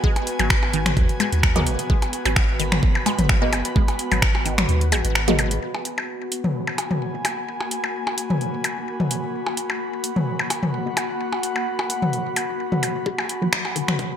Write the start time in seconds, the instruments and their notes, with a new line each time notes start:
Already playing: synth drone B3, analog synth pad F#4 B4 G#5
0.04 sub bass G#1, synth arpeggio sound G#3, kick
0.16 closed hi-hat, percussion blips
0.27 open hi-hat
0.39 sub bass G#1, synth arpeggio sound F#3, closed hi-hat, percussion blips
0.50 finger snap, kick
0.63 percussion blips
0.73 synth arpeggio sound D#3, open hi-hat
0.86 finger snap, closed hi-hat, mid tom
0.97 sub bass D#2, kick, open hi-hat
1.09 closed hi-hat
1.20 synth arpeggio sound G#3, open hi-hat, percussion blips
1.32 sub bass D#2, closed hi-hat
1.43 finger snap, kick
1.56 synth arpeggio sound A#3, synth stab B3 F#4 G#4 D#5, closed hi-hat, mid tom
1.66 sub bass G#1, open hi-hat
1.79 closed hi-hat
1.90 sub bass G#1, synth arpeggio sound G#3, kick
2.02 closed hi-hat, percussion blips
2.13 open hi-hat
2.22 sub bass G#1, synth arpeggio sound F#3, analog synth pad B5, closed hi-hat, percussion blips
2.36 finger snap, kick
2.60 synth arpeggio sound D#3, open hi-hat
2.72 finger snap, mid tom
2.83 kick
2.95 percussion blips
3.06 synth arpeggio sound G#3, open hi-hat, percussion blips
3.19 sub bass G#1, closed hi-hat, mid tom
3.29 finger snap, kick
3.42 synth arpeggio sound A#3, synth stab B3 F#4 G#4 D#5
3.53 sub bass F#1, open hi-hat, percussion blips
3.65 closed hi-hat
3.76 sub bass G#1, synth arpeggio sound G#3, kick
3.88 closed hi-hat, percussion blips
3.99 open hi-hat
4.12 sub bass G#1, synth arpeggio sound F#3, open hi-hat, percussion blips
4.22 finger snap, kick
4.35 percussion blips
4.46 synth arpeggio sound D#3, open hi-hat
4.58 finger snap, closed hi-hat, mid tom
4.69 sub bass D#2, open hi-hat
4.81 closed hi-hat
4.92 sub bass G#1, synth arpeggio sound G#3, open hi-hat, percussion blips
5.05 sub bass G#1, closed hi-hat
5.15 finger snap
5.28 synth arpeggio sound A#3, synth stab B3 F#4 G#4 D#5, closed hi-hat, mid tom
5.39 open hi-hat, percussion blips
5.51 closed hi-hat
5.62 sub bass G#1, synth drone A#3, analog synth pad F#4
5.75 percussion blips
5.85 open hi-hat
5.98 sub bass G#1, percussion blips
6.10 analog synth pad B5
6.32 open hi-hat
6.36 analog synth pad G#5
6.44 mid tom
6.67 percussion blips
6.78 open hi-hat, percussion blips
6.91 sub bass G#1, mid tom
7.14 synth stab B3 F#4 G#4 D#5
7.25 sub bass F#1, open hi-hat, percussion blips
7.48 sub bass G#1
7.61 percussion blips
7.71 open hi-hat
7.84 sub bass G#1, percussion blips
8.07 percussion blips
8.18 open hi-hat
8.30 mid tom
8.41 sub bass D#2, open hi-hat
8.64 open hi-hat, percussion blips
8.77 sub bass D#2
9.00 synth stab B3 F#4 G#4 D#5, mid tom
9.11 sub bass G#1, open hi-hat
9.34 sub bass G#1
9.46 percussion blips
9.57 open hi-hat
9.70 sub bass G#1, percussion blips
10.04 open hi-hat
10.16 mid tom
10.39 percussion blips
10.44 analog synth pad F#5
10.50 open hi-hat, percussion blips
10.63 sub bass G#1, mid tom
10.86 synth stab B3 F#4 G#4 D#5
10.97 sub bass F#1, open hi-hat, percussion blips
11.20 sub bass G#1
11.33 percussion blips
11.43 open hi-hat
11.56 sub bass G#1, percussion blips
11.79 percussion blips
11.90 open hi-hat
12.02 mid tom
12.13 sub bass D#2, open hi-hat
12.36 open hi-hat, percussion blips
12.49 sub bass D#2
12.72 synth stab B3 F#4 G#4 D#5, mid tom
12.83 sub bass G#1, open hi-hat, percussion blips
13.06 sub bass G#1, synth arpeggio sound G#3, synth drone B3, kick
13.18 percussion blips
13.29 open hi-hat
13.42 sub bass G#1, synth arpeggio sound F#3
13.53 finger snap, kick
13.65 percussion blips
13.76 synth arpeggio sound D#3, open hi-hat
13.88 finger snap, mid tom
13.97 analog synth pad G#5, kick, open hi-hat